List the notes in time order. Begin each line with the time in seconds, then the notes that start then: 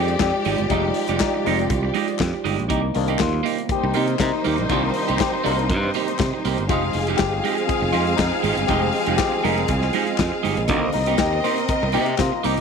Already playing: F2 F3 G#3 D#4 F4 G4 D5
0.08 muted clean electric guitar stroke, closed hi-hat
0.19 F2 G4, muted clean electric guitar stroke, kick, snare, clap, closed hi-hat
0.34 muted clean electric guitar stroke
0.45 G#1 G#3 D#4 G4, open hi-hat
0.58 G1, muted clean electric guitar stroke, closed hi-hat
0.69 F1 G3 G#3 D#4 G4, kick, closed hi-hat
0.84 muted clean electric guitar stroke
0.94 muted clean electric guitar stroke, open hi-hat
1.08 F1 G#3 D#4 G4, closed hi-hat
1.20 D#4, kick, snare, clap, closed hi-hat
1.34 muted clean electric guitar stroke
1.45 F1 G3 G#3 C4 D#4 G4, open hi-hat
1.59 muted clean electric guitar stroke, closed hi-hat
1.70 C2, muted clean electric guitar stroke, kick, closed hi-hat
1.83 muted clean electric guitar stroke
1.94 G#3 D#4 G4, open hi-hat
2.08 muted clean electric guitar stroke, closed hi-hat
2.19 F2, muted clean electric guitar stroke, kick, snare, clap, closed hi-hat
2.34 muted clean electric guitar stroke
2.44 G1 G#3 D#4 G4, open hi-hat
2.58 A#1, muted clean electric guitar stroke, closed hi-hat
2.69 C2 C3 D#3 G3 A#3 D#4 G4, kick, closed hi-hat
2.83 muted clean electric guitar stroke
2.95 C2 D#3 A#3 D4, muted clean electric guitar stroke, open hi-hat
3.08 A#3 D#4 G4, closed hi-hat
3.19 D#2 F4, kick, snare, clap, closed hi-hat
3.33 muted clean electric guitar stroke
3.43 A#3 D#4 G4, open hi-hat
3.58 muted clean electric guitar stroke, closed hi-hat
3.69 G3 D#4 G4 C5, muted clean electric guitar stroke, kick, closed hi-hat
3.83 C2, muted clean electric guitar stroke
3.94 C3 A#3 D#4 G4, open hi-hat
4.08 muted clean electric guitar stroke, closed hi-hat
4.19 C3 D#4, muted clean electric guitar stroke, kick, snare, clap, closed hi-hat
4.33 muted clean electric guitar stroke
4.44 D#2 A#3 D#4 G4, open hi-hat
4.58 A#1, muted clean electric guitar stroke, closed hi-hat
4.69 C2 D#3 A#3 C4 D4 D#4 F4 G4, kick, closed hi-hat
4.84 muted clean electric guitar stroke
4.94 muted clean electric guitar stroke, open hi-hat
5.08 C2 A#3 D#4 G4, closed hi-hat
5.19 G4, kick, snare, clap, closed hi-hat
5.32 muted clean electric guitar stroke
5.44 C2 D#3 A#3 D4 D#4 G4 A#4, open hi-hat
5.58 muted clean electric guitar stroke, closed hi-hat
5.70 G2, muted clean electric guitar stroke, kick, closed hi-hat
5.83 muted clean electric guitar stroke
5.94 A#3 D#4 G4, open hi-hat
6.08 muted clean electric guitar stroke, closed hi-hat
6.19 C3, muted clean electric guitar stroke, kick, snare, clap, closed hi-hat
6.34 muted clean electric guitar stroke
6.45 C2 A#3 D#4 G4, open hi-hat
6.58 G1, muted clean electric guitar stroke, closed hi-hat
6.68 F1 F3 G#3 C4 D#4 F4 G4 G#4 D#5 F5, kick, closed hi-hat
6.84 muted clean electric guitar stroke
6.93 F1, muted clean electric guitar stroke, open hi-hat
7.07 G#3 D#4 G4, closed hi-hat
7.17 G1 G4, kick, snare, clap, closed hi-hat
7.32 muted clean electric guitar stroke
7.44 G#3 D#4 G4, open hi-hat
7.57 muted clean electric guitar stroke, closed hi-hat
7.67 G#4, muted clean electric guitar stroke, kick, closed hi-hat
7.82 F1, muted clean electric guitar stroke
7.92 F2 G#3 D#4 F4 G4, open hi-hat
8.06 muted clean electric guitar stroke, closed hi-hat
8.17 F2 D#4, muted clean electric guitar stroke, kick, snare, clap, closed hi-hat
8.32 muted clean electric guitar stroke
8.43 G#1 G#3 D#4 G4, open hi-hat
8.57 G1, muted clean electric guitar stroke, closed hi-hat
8.67 F1 F3 G#3 D#4 F4 G4, kick, closed hi-hat
8.71 G4
8.82 muted clean electric guitar stroke
8.93 muted clean electric guitar stroke, open hi-hat
9.06 F1 G#3 D#4 G4, closed hi-hat
9.17 G4, kick, snare, clap, closed hi-hat
9.32 muted clean electric guitar stroke
9.44 F1 G3 G#3 D#4 G4 A#4, open hi-hat
9.57 muted clean electric guitar stroke, closed hi-hat
9.68 C2, muted clean electric guitar stroke, kick, closed hi-hat
9.82 muted clean electric guitar stroke, snare
9.93 G#3 D#4 G4, open hi-hat
10.06 muted clean electric guitar stroke, closed hi-hat
10.18 F2, muted clean electric guitar stroke, kick, snare, clap, closed hi-hat
10.32 muted clean electric guitar stroke
10.43 G1 G#3 D#4 G4, open hi-hat
10.57 A#1, muted clean electric guitar stroke, closed hi-hat
10.68 C2 C3 D3 D#3 A#3 C4 D#4 G4 A#4 D#5, kick, closed hi-hat
10.82 muted clean electric guitar stroke
10.93 C2 D#4, muted clean electric guitar stroke, open hi-hat
11.06 A#3 D#4 G4, closed hi-hat
11.18 D#2 G4, kick, snare, clap, closed hi-hat
11.33 muted clean electric guitar stroke
11.44 A#3 D#4 G4 C5, open hi-hat
11.58 muted clean electric guitar stroke, closed hi-hat
11.69 A#4, muted clean electric guitar stroke, kick, closed hi-hat
11.83 C2, muted clean electric guitar stroke
11.92 C3 A#3 D#4 G4, open hi-hat
12.06 muted clean electric guitar stroke, closed hi-hat
12.18 C3 F4, muted clean electric guitar stroke, kick, snare, clap, closed hi-hat
12.32 muted clean electric guitar stroke
12.44 C2 A#3 D#4 G4, open hi-hat
12.57 closed hi-hat